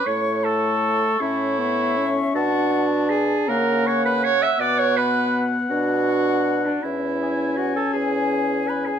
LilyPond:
<<
  \new Staff \with { instrumentName = "Flute" } { \time 6/8 \key a \major \tempo 4. = 53 cis'''8 a''4 e''4. | fis''4 gis''8 ais''8 cis'''16 b''16 cis'''16 e'''16 | d'''16 cis'''16 b''8. r16 fis''4~ fis''16 d''16 | e''4 fis''16 a''16 gis''4 b''16 gis''16 | }
  \new Staff \with { instrumentName = "Oboe" } { \time 6/8 \key a \major r8 cis'''4. cis'''4 | a''8 a''4 fis''8 fis''4 | fis''8 fis''4. fis''4 | r8 gis''4. gis''4 | }
  \new Staff \with { instrumentName = "Clarinet" } { \time 6/8 \key a \major cis''8 a'4 e'4. | fis'4 gis'8 ais'8 cis''16 b'16 cis''16 e''16 | d''16 cis''16 b'8. r16 fis'4~ fis'16 d'16 | e'4 fis'16 a'16 gis'4 b'16 gis'16 | }
  \new Staff \with { instrumentName = "French horn" } { \time 6/8 \key a \major a4. cis'8 b8 cis'8 | d'4. ais4 r8 | b4. d'4. | cis'2. | }
  \new Staff \with { instrumentName = "Bassoon" } { \clef bass \time 6/8 \key a \major a,4. a,4. | b,4. cis4. | b,4. b,4. | e,4. e,4. | }
>>